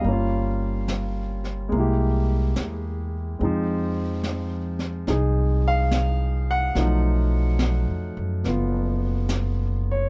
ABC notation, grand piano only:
X:1
M:4/4
L:1/8
Q:"Swing" 1/4=71
K:Fphr
V:1 name="Grand piano"
f2 z6 | z4 z f2 g- | g2 z4 z d |]
V:2 name="Grand piano"
[=G,B,DF]4 [A,B,=E=G]4 | [F,A,CE]4 [EA]4 | [^E,^F,=A,^D]4 [=B,^E]4 |]